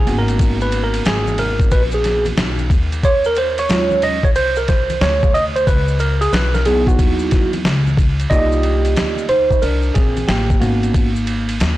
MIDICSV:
0, 0, Header, 1, 4, 480
1, 0, Start_track
1, 0, Tempo, 659341
1, 288, Time_signature, 4, 2, 24, 8
1, 8572, End_track
2, 0, Start_track
2, 0, Title_t, "Tine electric piano"
2, 0, Program_c, 0, 4
2, 0, Note_on_c, 0, 68, 84
2, 49, Note_on_c, 0, 58, 53
2, 52, Note_on_c, 0, 59, 49
2, 54, Note_on_c, 0, 61, 55
2, 58, Note_on_c, 0, 66, 65
2, 135, Note_on_c, 0, 70, 96
2, 137, Note_off_c, 0, 68, 0
2, 429, Note_off_c, 0, 70, 0
2, 450, Note_on_c, 0, 71, 99
2, 598, Note_off_c, 0, 71, 0
2, 609, Note_on_c, 0, 70, 99
2, 758, Note_off_c, 0, 70, 0
2, 774, Note_on_c, 0, 68, 95
2, 1013, Note_on_c, 0, 70, 93
2, 1018, Note_off_c, 0, 68, 0
2, 1251, Note_on_c, 0, 71, 102
2, 1258, Note_off_c, 0, 70, 0
2, 1322, Note_off_c, 0, 71, 0
2, 1414, Note_on_c, 0, 68, 70
2, 1635, Note_off_c, 0, 68, 0
2, 1940, Note_off_c, 0, 58, 0
2, 1941, Note_off_c, 0, 59, 0
2, 1942, Note_off_c, 0, 61, 0
2, 1944, Note_off_c, 0, 66, 0
2, 2218, Note_on_c, 0, 73, 100
2, 2374, Note_off_c, 0, 73, 0
2, 2374, Note_on_c, 0, 70, 94
2, 2455, Note_off_c, 0, 70, 0
2, 2460, Note_on_c, 0, 72, 94
2, 2613, Note_on_c, 0, 73, 106
2, 2615, Note_off_c, 0, 72, 0
2, 2688, Note_on_c, 0, 54, 59
2, 2692, Note_on_c, 0, 56, 55
2, 2693, Note_on_c, 0, 61, 50
2, 2697, Note_on_c, 0, 65, 62
2, 2937, Note_on_c, 0, 75, 107
2, 2942, Note_off_c, 0, 73, 0
2, 3035, Note_off_c, 0, 54, 0
2, 3037, Note_off_c, 0, 56, 0
2, 3038, Note_off_c, 0, 61, 0
2, 3040, Note_off_c, 0, 65, 0
2, 3090, Note_on_c, 0, 73, 97
2, 3094, Note_off_c, 0, 75, 0
2, 3126, Note_off_c, 0, 73, 0
2, 3173, Note_on_c, 0, 72, 114
2, 3328, Note_on_c, 0, 70, 87
2, 3332, Note_off_c, 0, 72, 0
2, 3411, Note_on_c, 0, 72, 90
2, 3412, Note_off_c, 0, 70, 0
2, 3651, Note_on_c, 0, 73, 99
2, 3657, Note_off_c, 0, 72, 0
2, 3890, Note_on_c, 0, 75, 104
2, 3897, Note_off_c, 0, 73, 0
2, 3960, Note_off_c, 0, 75, 0
2, 4045, Note_on_c, 0, 72, 95
2, 4128, Note_on_c, 0, 71, 98
2, 4131, Note_off_c, 0, 72, 0
2, 4351, Note_off_c, 0, 71, 0
2, 4366, Note_on_c, 0, 70, 96
2, 4513, Note_off_c, 0, 70, 0
2, 4521, Note_on_c, 0, 68, 95
2, 4606, Note_on_c, 0, 71, 97
2, 4609, Note_off_c, 0, 68, 0
2, 4765, Note_on_c, 0, 70, 88
2, 4769, Note_off_c, 0, 71, 0
2, 4842, Note_on_c, 0, 64, 55
2, 4846, Note_on_c, 0, 54, 53
2, 4847, Note_on_c, 0, 68, 83
2, 4849, Note_on_c, 0, 59, 52
2, 4851, Note_off_c, 0, 70, 0
2, 4851, Note_on_c, 0, 63, 62
2, 4994, Note_off_c, 0, 68, 0
2, 5007, Note_on_c, 0, 66, 84
2, 5457, Note_off_c, 0, 66, 0
2, 5536, Note_off_c, 0, 64, 0
2, 5538, Note_off_c, 0, 54, 0
2, 5540, Note_off_c, 0, 59, 0
2, 5541, Note_off_c, 0, 63, 0
2, 6041, Note_on_c, 0, 75, 107
2, 6046, Note_on_c, 0, 58, 56
2, 6048, Note_on_c, 0, 74, 52
2, 6050, Note_on_c, 0, 63, 55
2, 6055, Note_on_c, 0, 65, 66
2, 6056, Note_on_c, 0, 67, 85
2, 6736, Note_off_c, 0, 75, 0
2, 6738, Note_off_c, 0, 58, 0
2, 6739, Note_off_c, 0, 74, 0
2, 6740, Note_off_c, 0, 63, 0
2, 6743, Note_off_c, 0, 65, 0
2, 6743, Note_off_c, 0, 67, 0
2, 6763, Note_on_c, 0, 72, 93
2, 6777, Note_on_c, 0, 63, 67
2, 6996, Note_off_c, 0, 63, 0
2, 7002, Note_on_c, 0, 70, 87
2, 7013, Note_off_c, 0, 72, 0
2, 7018, Note_on_c, 0, 62, 75
2, 7237, Note_off_c, 0, 62, 0
2, 7239, Note_on_c, 0, 68, 76
2, 7253, Note_off_c, 0, 70, 0
2, 7256, Note_on_c, 0, 60, 59
2, 7476, Note_off_c, 0, 60, 0
2, 7480, Note_on_c, 0, 67, 88
2, 7491, Note_off_c, 0, 68, 0
2, 7496, Note_on_c, 0, 58, 63
2, 7707, Note_off_c, 0, 67, 0
2, 7716, Note_off_c, 0, 58, 0
2, 7719, Note_on_c, 0, 66, 73
2, 7725, Note_on_c, 0, 58, 62
2, 7728, Note_on_c, 0, 59, 52
2, 7732, Note_on_c, 0, 61, 51
2, 8075, Note_off_c, 0, 59, 0
2, 8077, Note_off_c, 0, 61, 0
2, 8078, Note_off_c, 0, 66, 0
2, 8423, Note_off_c, 0, 58, 0
2, 8572, End_track
3, 0, Start_track
3, 0, Title_t, "Upright bass"
3, 0, Program_c, 1, 32
3, 50, Note_on_c, 1, 32, 98
3, 740, Note_off_c, 1, 32, 0
3, 770, Note_on_c, 1, 32, 82
3, 1225, Note_off_c, 1, 32, 0
3, 1249, Note_on_c, 1, 34, 91
3, 1705, Note_off_c, 1, 34, 0
3, 1731, Note_on_c, 1, 35, 99
3, 1958, Note_off_c, 1, 35, 0
3, 1967, Note_on_c, 1, 39, 95
3, 2658, Note_off_c, 1, 39, 0
3, 2689, Note_on_c, 1, 39, 94
3, 3168, Note_off_c, 1, 39, 0
3, 3168, Note_on_c, 1, 36, 96
3, 3624, Note_off_c, 1, 36, 0
3, 3647, Note_on_c, 1, 38, 100
3, 4104, Note_off_c, 1, 38, 0
3, 4129, Note_on_c, 1, 37, 101
3, 4585, Note_off_c, 1, 37, 0
3, 4607, Note_on_c, 1, 35, 92
3, 5064, Note_off_c, 1, 35, 0
3, 5089, Note_on_c, 1, 39, 87
3, 5545, Note_off_c, 1, 39, 0
3, 5567, Note_on_c, 1, 37, 89
3, 6024, Note_off_c, 1, 37, 0
3, 6048, Note_on_c, 1, 36, 100
3, 6504, Note_off_c, 1, 36, 0
3, 6529, Note_on_c, 1, 38, 80
3, 6985, Note_off_c, 1, 38, 0
3, 7008, Note_on_c, 1, 36, 82
3, 7236, Note_off_c, 1, 36, 0
3, 7251, Note_on_c, 1, 34, 87
3, 7478, Note_off_c, 1, 34, 0
3, 7486, Note_on_c, 1, 33, 88
3, 7715, Note_off_c, 1, 33, 0
3, 7724, Note_on_c, 1, 32, 94
3, 8417, Note_off_c, 1, 32, 0
3, 8447, Note_on_c, 1, 39, 86
3, 8572, Note_off_c, 1, 39, 0
3, 8572, End_track
4, 0, Start_track
4, 0, Title_t, "Drums"
4, 51, Note_on_c, 9, 51, 55
4, 57, Note_on_c, 9, 64, 64
4, 57, Note_on_c, 9, 82, 47
4, 124, Note_off_c, 9, 51, 0
4, 129, Note_off_c, 9, 64, 0
4, 129, Note_off_c, 9, 82, 0
4, 205, Note_on_c, 9, 51, 44
4, 212, Note_on_c, 9, 82, 47
4, 278, Note_off_c, 9, 51, 0
4, 285, Note_off_c, 9, 82, 0
4, 286, Note_on_c, 9, 51, 70
4, 288, Note_on_c, 9, 36, 114
4, 298, Note_on_c, 9, 82, 58
4, 359, Note_off_c, 9, 51, 0
4, 361, Note_off_c, 9, 36, 0
4, 371, Note_off_c, 9, 82, 0
4, 444, Note_on_c, 9, 82, 46
4, 517, Note_off_c, 9, 82, 0
4, 520, Note_on_c, 9, 82, 41
4, 526, Note_on_c, 9, 51, 59
4, 593, Note_off_c, 9, 82, 0
4, 599, Note_off_c, 9, 51, 0
4, 683, Note_on_c, 9, 51, 53
4, 687, Note_on_c, 9, 82, 47
4, 755, Note_off_c, 9, 51, 0
4, 760, Note_off_c, 9, 82, 0
4, 766, Note_on_c, 9, 82, 54
4, 769, Note_on_c, 9, 44, 43
4, 769, Note_on_c, 9, 51, 66
4, 776, Note_on_c, 9, 38, 110
4, 839, Note_off_c, 9, 82, 0
4, 842, Note_off_c, 9, 44, 0
4, 842, Note_off_c, 9, 51, 0
4, 848, Note_off_c, 9, 38, 0
4, 927, Note_on_c, 9, 63, 65
4, 927, Note_on_c, 9, 82, 45
4, 1000, Note_off_c, 9, 63, 0
4, 1000, Note_off_c, 9, 82, 0
4, 1005, Note_on_c, 9, 51, 61
4, 1010, Note_on_c, 9, 64, 56
4, 1010, Note_on_c, 9, 82, 37
4, 1078, Note_off_c, 9, 51, 0
4, 1083, Note_off_c, 9, 64, 0
4, 1083, Note_off_c, 9, 82, 0
4, 1162, Note_on_c, 9, 36, 82
4, 1162, Note_on_c, 9, 51, 39
4, 1171, Note_on_c, 9, 82, 39
4, 1235, Note_off_c, 9, 36, 0
4, 1235, Note_off_c, 9, 51, 0
4, 1244, Note_off_c, 9, 82, 0
4, 1246, Note_on_c, 9, 82, 57
4, 1250, Note_on_c, 9, 36, 96
4, 1250, Note_on_c, 9, 51, 70
4, 1319, Note_off_c, 9, 82, 0
4, 1322, Note_off_c, 9, 51, 0
4, 1323, Note_off_c, 9, 36, 0
4, 1394, Note_on_c, 9, 82, 53
4, 1467, Note_off_c, 9, 82, 0
4, 1486, Note_on_c, 9, 51, 57
4, 1488, Note_on_c, 9, 82, 46
4, 1497, Note_on_c, 9, 38, 34
4, 1559, Note_off_c, 9, 51, 0
4, 1561, Note_off_c, 9, 82, 0
4, 1569, Note_off_c, 9, 38, 0
4, 1641, Note_on_c, 9, 63, 65
4, 1641, Note_on_c, 9, 82, 45
4, 1644, Note_on_c, 9, 51, 39
4, 1714, Note_off_c, 9, 63, 0
4, 1714, Note_off_c, 9, 82, 0
4, 1717, Note_off_c, 9, 51, 0
4, 1726, Note_on_c, 9, 82, 56
4, 1729, Note_on_c, 9, 38, 102
4, 1729, Note_on_c, 9, 44, 48
4, 1729, Note_on_c, 9, 51, 67
4, 1799, Note_off_c, 9, 82, 0
4, 1802, Note_off_c, 9, 38, 0
4, 1802, Note_off_c, 9, 44, 0
4, 1802, Note_off_c, 9, 51, 0
4, 1883, Note_on_c, 9, 63, 58
4, 1883, Note_on_c, 9, 82, 41
4, 1956, Note_off_c, 9, 63, 0
4, 1956, Note_off_c, 9, 82, 0
4, 1966, Note_on_c, 9, 36, 87
4, 1970, Note_on_c, 9, 51, 51
4, 1974, Note_on_c, 9, 64, 65
4, 1974, Note_on_c, 9, 82, 46
4, 2039, Note_off_c, 9, 36, 0
4, 2043, Note_off_c, 9, 51, 0
4, 2047, Note_off_c, 9, 64, 0
4, 2047, Note_off_c, 9, 82, 0
4, 2128, Note_on_c, 9, 51, 42
4, 2129, Note_on_c, 9, 82, 46
4, 2201, Note_off_c, 9, 51, 0
4, 2202, Note_off_c, 9, 82, 0
4, 2209, Note_on_c, 9, 36, 113
4, 2210, Note_on_c, 9, 51, 67
4, 2215, Note_on_c, 9, 82, 62
4, 2282, Note_off_c, 9, 36, 0
4, 2283, Note_off_c, 9, 51, 0
4, 2288, Note_off_c, 9, 82, 0
4, 2361, Note_on_c, 9, 82, 51
4, 2434, Note_off_c, 9, 82, 0
4, 2439, Note_on_c, 9, 82, 46
4, 2450, Note_on_c, 9, 51, 62
4, 2512, Note_off_c, 9, 82, 0
4, 2523, Note_off_c, 9, 51, 0
4, 2606, Note_on_c, 9, 51, 52
4, 2606, Note_on_c, 9, 82, 49
4, 2679, Note_off_c, 9, 51, 0
4, 2679, Note_off_c, 9, 82, 0
4, 2687, Note_on_c, 9, 82, 58
4, 2691, Note_on_c, 9, 44, 47
4, 2691, Note_on_c, 9, 51, 69
4, 2698, Note_on_c, 9, 38, 102
4, 2760, Note_off_c, 9, 82, 0
4, 2764, Note_off_c, 9, 44, 0
4, 2764, Note_off_c, 9, 51, 0
4, 2770, Note_off_c, 9, 38, 0
4, 2846, Note_on_c, 9, 63, 63
4, 2846, Note_on_c, 9, 82, 45
4, 2919, Note_off_c, 9, 63, 0
4, 2919, Note_off_c, 9, 82, 0
4, 2928, Note_on_c, 9, 51, 65
4, 2933, Note_on_c, 9, 64, 51
4, 2933, Note_on_c, 9, 82, 39
4, 3000, Note_off_c, 9, 51, 0
4, 3006, Note_off_c, 9, 64, 0
4, 3006, Note_off_c, 9, 82, 0
4, 3082, Note_on_c, 9, 36, 93
4, 3084, Note_on_c, 9, 51, 38
4, 3094, Note_on_c, 9, 82, 43
4, 3155, Note_off_c, 9, 36, 0
4, 3157, Note_off_c, 9, 51, 0
4, 3167, Note_off_c, 9, 82, 0
4, 3170, Note_on_c, 9, 82, 54
4, 3172, Note_on_c, 9, 51, 72
4, 3243, Note_off_c, 9, 82, 0
4, 3245, Note_off_c, 9, 51, 0
4, 3317, Note_on_c, 9, 82, 51
4, 3390, Note_off_c, 9, 82, 0
4, 3407, Note_on_c, 9, 51, 59
4, 3412, Note_on_c, 9, 36, 93
4, 3413, Note_on_c, 9, 82, 47
4, 3417, Note_on_c, 9, 38, 31
4, 3479, Note_off_c, 9, 51, 0
4, 3484, Note_off_c, 9, 36, 0
4, 3486, Note_off_c, 9, 82, 0
4, 3490, Note_off_c, 9, 38, 0
4, 3566, Note_on_c, 9, 51, 41
4, 3566, Note_on_c, 9, 63, 69
4, 3566, Note_on_c, 9, 82, 48
4, 3638, Note_off_c, 9, 63, 0
4, 3638, Note_off_c, 9, 82, 0
4, 3639, Note_off_c, 9, 51, 0
4, 3650, Note_on_c, 9, 38, 102
4, 3650, Note_on_c, 9, 44, 55
4, 3650, Note_on_c, 9, 51, 68
4, 3650, Note_on_c, 9, 82, 59
4, 3723, Note_off_c, 9, 38, 0
4, 3723, Note_off_c, 9, 44, 0
4, 3723, Note_off_c, 9, 51, 0
4, 3723, Note_off_c, 9, 82, 0
4, 3807, Note_on_c, 9, 63, 53
4, 3807, Note_on_c, 9, 82, 40
4, 3808, Note_on_c, 9, 36, 97
4, 3879, Note_off_c, 9, 63, 0
4, 3879, Note_off_c, 9, 82, 0
4, 3880, Note_off_c, 9, 36, 0
4, 3894, Note_on_c, 9, 51, 57
4, 3898, Note_on_c, 9, 64, 66
4, 3898, Note_on_c, 9, 82, 44
4, 3967, Note_off_c, 9, 51, 0
4, 3971, Note_off_c, 9, 64, 0
4, 3971, Note_off_c, 9, 82, 0
4, 4050, Note_on_c, 9, 51, 44
4, 4054, Note_on_c, 9, 82, 51
4, 4122, Note_off_c, 9, 51, 0
4, 4126, Note_off_c, 9, 82, 0
4, 4129, Note_on_c, 9, 36, 109
4, 4131, Note_on_c, 9, 51, 68
4, 4135, Note_on_c, 9, 82, 64
4, 4202, Note_off_c, 9, 36, 0
4, 4204, Note_off_c, 9, 51, 0
4, 4208, Note_off_c, 9, 82, 0
4, 4282, Note_on_c, 9, 82, 46
4, 4355, Note_off_c, 9, 82, 0
4, 4361, Note_on_c, 9, 82, 46
4, 4370, Note_on_c, 9, 51, 61
4, 4434, Note_off_c, 9, 82, 0
4, 4442, Note_off_c, 9, 51, 0
4, 4525, Note_on_c, 9, 51, 55
4, 4528, Note_on_c, 9, 82, 51
4, 4598, Note_off_c, 9, 51, 0
4, 4600, Note_off_c, 9, 82, 0
4, 4607, Note_on_c, 9, 82, 62
4, 4610, Note_on_c, 9, 44, 47
4, 4610, Note_on_c, 9, 51, 69
4, 4617, Note_on_c, 9, 38, 107
4, 4680, Note_off_c, 9, 82, 0
4, 4683, Note_off_c, 9, 44, 0
4, 4683, Note_off_c, 9, 51, 0
4, 4690, Note_off_c, 9, 38, 0
4, 4764, Note_on_c, 9, 63, 64
4, 4764, Note_on_c, 9, 82, 46
4, 4768, Note_on_c, 9, 38, 39
4, 4837, Note_off_c, 9, 63, 0
4, 4837, Note_off_c, 9, 82, 0
4, 4841, Note_off_c, 9, 38, 0
4, 4844, Note_on_c, 9, 51, 66
4, 4851, Note_on_c, 9, 64, 56
4, 4851, Note_on_c, 9, 82, 38
4, 4917, Note_off_c, 9, 51, 0
4, 4924, Note_off_c, 9, 64, 0
4, 4924, Note_off_c, 9, 82, 0
4, 5000, Note_on_c, 9, 36, 86
4, 5001, Note_on_c, 9, 51, 36
4, 5012, Note_on_c, 9, 82, 46
4, 5073, Note_off_c, 9, 36, 0
4, 5074, Note_off_c, 9, 51, 0
4, 5085, Note_off_c, 9, 82, 0
4, 5088, Note_on_c, 9, 36, 100
4, 5088, Note_on_c, 9, 82, 54
4, 5089, Note_on_c, 9, 51, 77
4, 5161, Note_off_c, 9, 36, 0
4, 5161, Note_off_c, 9, 82, 0
4, 5162, Note_off_c, 9, 51, 0
4, 5235, Note_on_c, 9, 82, 50
4, 5308, Note_off_c, 9, 82, 0
4, 5323, Note_on_c, 9, 51, 61
4, 5330, Note_on_c, 9, 36, 85
4, 5331, Note_on_c, 9, 64, 64
4, 5331, Note_on_c, 9, 82, 50
4, 5334, Note_on_c, 9, 38, 30
4, 5396, Note_off_c, 9, 51, 0
4, 5403, Note_off_c, 9, 36, 0
4, 5404, Note_off_c, 9, 64, 0
4, 5404, Note_off_c, 9, 82, 0
4, 5407, Note_off_c, 9, 38, 0
4, 5483, Note_on_c, 9, 51, 39
4, 5483, Note_on_c, 9, 63, 70
4, 5483, Note_on_c, 9, 82, 49
4, 5556, Note_off_c, 9, 51, 0
4, 5556, Note_off_c, 9, 63, 0
4, 5556, Note_off_c, 9, 82, 0
4, 5569, Note_on_c, 9, 38, 110
4, 5569, Note_on_c, 9, 44, 54
4, 5569, Note_on_c, 9, 51, 65
4, 5573, Note_on_c, 9, 82, 60
4, 5642, Note_off_c, 9, 38, 0
4, 5642, Note_off_c, 9, 44, 0
4, 5642, Note_off_c, 9, 51, 0
4, 5645, Note_off_c, 9, 82, 0
4, 5728, Note_on_c, 9, 63, 56
4, 5728, Note_on_c, 9, 82, 40
4, 5801, Note_off_c, 9, 63, 0
4, 5801, Note_off_c, 9, 82, 0
4, 5806, Note_on_c, 9, 36, 91
4, 5811, Note_on_c, 9, 51, 58
4, 5818, Note_on_c, 9, 64, 61
4, 5818, Note_on_c, 9, 82, 47
4, 5878, Note_off_c, 9, 36, 0
4, 5884, Note_off_c, 9, 51, 0
4, 5891, Note_off_c, 9, 64, 0
4, 5891, Note_off_c, 9, 82, 0
4, 5967, Note_on_c, 9, 51, 46
4, 5972, Note_on_c, 9, 82, 48
4, 6040, Note_off_c, 9, 51, 0
4, 6045, Note_off_c, 9, 82, 0
4, 6047, Note_on_c, 9, 51, 69
4, 6048, Note_on_c, 9, 36, 104
4, 6056, Note_on_c, 9, 82, 60
4, 6120, Note_off_c, 9, 51, 0
4, 6121, Note_off_c, 9, 36, 0
4, 6129, Note_off_c, 9, 82, 0
4, 6204, Note_on_c, 9, 82, 49
4, 6276, Note_off_c, 9, 82, 0
4, 6283, Note_on_c, 9, 82, 44
4, 6285, Note_on_c, 9, 51, 62
4, 6355, Note_off_c, 9, 82, 0
4, 6358, Note_off_c, 9, 51, 0
4, 6442, Note_on_c, 9, 51, 48
4, 6445, Note_on_c, 9, 82, 51
4, 6514, Note_off_c, 9, 51, 0
4, 6518, Note_off_c, 9, 82, 0
4, 6526, Note_on_c, 9, 44, 47
4, 6526, Note_on_c, 9, 51, 65
4, 6527, Note_on_c, 9, 82, 59
4, 6533, Note_on_c, 9, 38, 99
4, 6599, Note_off_c, 9, 44, 0
4, 6599, Note_off_c, 9, 51, 0
4, 6600, Note_off_c, 9, 82, 0
4, 6606, Note_off_c, 9, 38, 0
4, 6684, Note_on_c, 9, 82, 46
4, 6757, Note_off_c, 9, 82, 0
4, 6761, Note_on_c, 9, 51, 55
4, 6767, Note_on_c, 9, 64, 54
4, 6767, Note_on_c, 9, 82, 38
4, 6834, Note_off_c, 9, 51, 0
4, 6840, Note_off_c, 9, 64, 0
4, 6840, Note_off_c, 9, 82, 0
4, 6920, Note_on_c, 9, 36, 83
4, 6920, Note_on_c, 9, 51, 34
4, 6929, Note_on_c, 9, 82, 41
4, 6993, Note_off_c, 9, 36, 0
4, 6993, Note_off_c, 9, 51, 0
4, 7002, Note_off_c, 9, 82, 0
4, 7004, Note_on_c, 9, 82, 56
4, 7007, Note_on_c, 9, 51, 70
4, 7077, Note_off_c, 9, 82, 0
4, 7080, Note_off_c, 9, 51, 0
4, 7151, Note_on_c, 9, 82, 45
4, 7224, Note_off_c, 9, 82, 0
4, 7245, Note_on_c, 9, 51, 58
4, 7249, Note_on_c, 9, 82, 46
4, 7251, Note_on_c, 9, 36, 83
4, 7256, Note_on_c, 9, 38, 30
4, 7318, Note_off_c, 9, 51, 0
4, 7322, Note_off_c, 9, 82, 0
4, 7324, Note_off_c, 9, 36, 0
4, 7328, Note_off_c, 9, 38, 0
4, 7402, Note_on_c, 9, 51, 37
4, 7402, Note_on_c, 9, 63, 64
4, 7402, Note_on_c, 9, 82, 46
4, 7475, Note_off_c, 9, 51, 0
4, 7475, Note_off_c, 9, 63, 0
4, 7475, Note_off_c, 9, 82, 0
4, 7488, Note_on_c, 9, 38, 97
4, 7488, Note_on_c, 9, 44, 44
4, 7488, Note_on_c, 9, 51, 71
4, 7489, Note_on_c, 9, 82, 61
4, 7560, Note_off_c, 9, 44, 0
4, 7560, Note_off_c, 9, 51, 0
4, 7561, Note_off_c, 9, 38, 0
4, 7562, Note_off_c, 9, 82, 0
4, 7645, Note_on_c, 9, 36, 87
4, 7645, Note_on_c, 9, 82, 36
4, 7718, Note_off_c, 9, 36, 0
4, 7718, Note_off_c, 9, 82, 0
4, 7728, Note_on_c, 9, 51, 52
4, 7735, Note_on_c, 9, 64, 61
4, 7735, Note_on_c, 9, 82, 44
4, 7801, Note_off_c, 9, 51, 0
4, 7807, Note_off_c, 9, 64, 0
4, 7807, Note_off_c, 9, 82, 0
4, 7885, Note_on_c, 9, 51, 41
4, 7890, Note_on_c, 9, 82, 45
4, 7958, Note_off_c, 9, 51, 0
4, 7962, Note_off_c, 9, 82, 0
4, 7967, Note_on_c, 9, 36, 110
4, 7967, Note_on_c, 9, 51, 68
4, 7975, Note_on_c, 9, 82, 55
4, 8040, Note_off_c, 9, 36, 0
4, 8040, Note_off_c, 9, 51, 0
4, 8048, Note_off_c, 9, 82, 0
4, 8125, Note_on_c, 9, 82, 49
4, 8198, Note_off_c, 9, 82, 0
4, 8202, Note_on_c, 9, 82, 42
4, 8206, Note_on_c, 9, 51, 61
4, 8275, Note_off_c, 9, 82, 0
4, 8278, Note_off_c, 9, 51, 0
4, 8363, Note_on_c, 9, 51, 50
4, 8368, Note_on_c, 9, 82, 50
4, 8435, Note_off_c, 9, 51, 0
4, 8441, Note_off_c, 9, 82, 0
4, 8447, Note_on_c, 9, 44, 49
4, 8447, Note_on_c, 9, 51, 62
4, 8447, Note_on_c, 9, 82, 58
4, 8454, Note_on_c, 9, 38, 104
4, 8520, Note_off_c, 9, 44, 0
4, 8520, Note_off_c, 9, 51, 0
4, 8520, Note_off_c, 9, 82, 0
4, 8527, Note_off_c, 9, 38, 0
4, 8572, End_track
0, 0, End_of_file